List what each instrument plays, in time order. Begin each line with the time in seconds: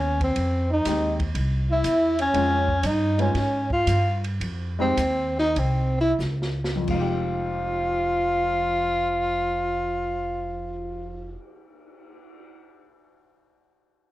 Already playing: upright bass D#2, trombone C#4, tenor saxophone C#4
0.20 trombone C4, tenor saxophone C4, kick, ride
0.36 upright bass F2, kick, ride
0.70 trombone D#4, tenor saxophone D#4
0.85 upright bass D#2, grand piano G#3 C4 D#4 G4, kick, snare, hi-hat pedal, ride
1.20 kick, ride
1.35 upright bass C2, kick, ride
1.71 trombone E4, tenor saxophone E4
1.84 upright bass E2, kick, hi-hat pedal, ride
2.19 trombone C#4, tenor saxophone C#4, ride
2.34 upright bass F2, grand piano G#3 C4 C#4 F4, kick, ride
2.69 kick
2.84 upright bass G2, trombone D#4, tenor saxophone D#4, kick, hi-hat pedal, ride
3.18 grand piano G#3 B3 D#4 F4, trombone C#4, tenor saxophone C#4, ride
3.34 upright bass G#2, kick, snare, ride
3.70 trombone F4, tenor saxophone F4, kick
3.87 upright bass G2, kick, hi-hat pedal, ride
4.24 ride
4.40 upright bass F2, kick, ride
4.79 grand piano G#3 C4 D#4 G4, tenor saxophone C4, trombone C4
4.97 upright bass D#2, kick, hi-hat pedal, ride
5.38 trombone D#4, tenor saxophone D#4, snare
5.56 upright bass C2, trombone C4, tenor saxophone C4, kick, ride
6.01 tenor saxophone E4, trombone E4
6.19 upright bass C#2, snare, hi-hat pedal
6.42 snare
6.64 snare
6.75 grand piano F2
6.82 grand piano F3
6.87 upright bass F1, trombone F3, grand piano G#3, tenor saxophone F4, kick, crash
6.94 grand piano D#4
7.01 grand piano G4
7.36 cymbal swell